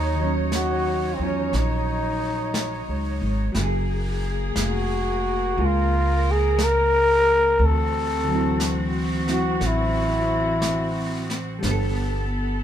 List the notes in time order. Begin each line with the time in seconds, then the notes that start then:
Already playing: D#2 F#3 D#4 C#5
0.15 D#3
0.20 F#3 C#4
0.52 F#4, brush sweep, snare, hi-hat pedal
1.14 C4
1.19 E2 F#3 C#4 F4
1.53 A#1, brush sweep, snare
1.58 D#4
2.54 brush sweep, snare, hi-hat pedal
2.88 C#2
3.21 G#1
3.52 F#1 F#3 A#3 G#4, brush sweep, snare
3.57 A#3
3.63 G#4
4.56 F1, brush sweep, snare, hi-hat pedal
4.63 F#4
5.57 C#2 A#3 F4 G#4 A#4, brush sweep
5.65 F4
6.31 G#4
6.59 brush sweep, snare, hi-hat pedal
6.64 A#4
7.59 D2 E3 C4 F#4, brush sweep
7.66 A4
8.24 D3
8.28 F#3 C4
8.35 E4
8.60 brush sweep, snare, hi-hat pedal
9.26 F#3 C4 E4, snare
9.33 F#4
9.61 A1, brush sweep, snare
9.67 E4
10.62 brush sweep, snare, hi-hat pedal
11.30 snare
11.59 G3, brush sweep, snare
11.63 G1 B3 A4
11.71 A4